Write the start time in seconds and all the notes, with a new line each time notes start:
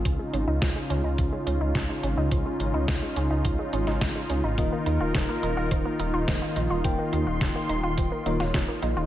Already playing: F4
0.05 C#2 C#3 F3 C#4 D#4, kick, closed hi-hat
0.19 G#3
0.33 G#1 C#4, closed hi-hat
0.48 C#2 D#4
0.62 C#2 F3, kick, snare, closed hi-hat
0.76 G#3
0.90 C#2 C#4, closed hi-hat
1.04 C#2 D#4
1.18 C#2 F3, kick, closed hi-hat
1.32 G#3
1.47 C#2 C#4, closed hi-hat
1.61 C#2 D#4
1.75 C#2 F3, kick, snare, closed hi-hat
1.89 G#3
2.03 G#1 C#4, closed hi-hat
2.17 C#2 D#4
2.31 C#2 F3, kick, closed hi-hat
2.46 G#3
2.60 G#1 C#4, closed hi-hat
2.74 C#2 D#4
2.88 C#2 F3, kick, snare, closed hi-hat
3.02 G#3
3.16 C#2 C#4, closed hi-hat
3.30 C#2 D#4
3.45 C#2 F3, kick, closed hi-hat
3.59 G#3
3.73 G#1 C#4, closed hi-hat
3.87 G#1 D#4, snare
4.01 G#1 F3, kick, snare, closed hi-hat
4.16 G#3
4.30 C#2 C#4, closed hi-hat
4.44 G#1 D#4
4.58 D#1 D#3 F3 A#3 D#4 F4 A#4 D#5, kick, closed hi-hat
4.72 A#3
4.86 D#2 D#4, closed hi-hat
5.00 D#1 F4
5.14 D#1 F3, kick, snare, closed hi-hat
5.29 A#3
5.43 D#1 D#4, closed hi-hat
5.57 D#1 F4
5.71 D#1 F3, kick, closed hi-hat
5.85 A#3
5.99 D#1 D#4, closed hi-hat
6.14 D#1 F4
6.28 D#1 D#3 F3 A#3 D#4 F4 A#4 D#5, kick, snare, closed hi-hat
6.42 A#3
6.56 A#1 D#4, closed hi-hat
6.70 D#1 F4
6.84 D#1 D#3 F3 A#3 D#4 F4 A#4 G5 C6, kick, closed hi-hat
6.99 A#3
7.13 D#2 D#4, closed hi-hat
7.27 D#1 F4
7.41 D#1 F3, kick, snare, closed hi-hat
7.55 A#3
7.69 D#1 D#4, closed hi-hat
7.83 D#1 F4
7.98 D#1 F3, kick, closed hi-hat
8.12 A#3
8.26 D#1 D#3 A#3 D#4 F4 A#4 C#5, closed hi-hat
8.40 D#1 F4, snare
8.54 D#1 F3, kick, snare, closed hi-hat
8.68 A#3
8.82 A#1 D#4, closed hi-hat
8.97 D#1 F4